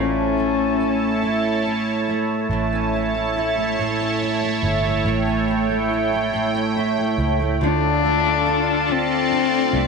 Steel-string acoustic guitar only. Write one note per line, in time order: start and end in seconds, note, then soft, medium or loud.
0.00 2.49 A2 medium
0.00 1.22 E4 medium
0.38 2.07 A3 medium
0.80 1.64 C#4 medium
1.23 2.93 E4 medium
1.65 2.72 C#4 medium
2.08 3.14 A3 medium
2.51 3.77 A2 medium
2.73 3.99 C#4 medium
2.94 3.35 E4 medium
3.14 3.57 A3 medium
3.36 4.21 E4 medium
3.57 4.43 A3 soft
3.79 5.04 A2 medium
4.00 5.25 C#4 medium
4.22 4.62 E4 medium
4.43 4.85 A3 medium
4.64 5.47 E4 medium
4.85 5.69 A3 medium
5.06 6.32 A2 medium
5.27 6.53 C#4 medium
5.48 5.90 E4 medium
5.69 6.12 A3 medium
5.91 6.75 E4 medium
6.13 6.97 A3 medium
6.33 7.70 A2 medium
6.54 7.70 C#4 medium
6.76 7.17 E4 medium
6.98 7.39 A3 medium
7.18 7.61 E4 medium
7.40 8.03 A3 medium
7.61 9.87 D3 medium
7.61 9.87 F4 medium
8.03 8.88 A3 medium
8.46 9.31 D4 medium
8.89 9.73 A3 medium
9.31 9.87 D4 medium
9.74 9.87 A3 medium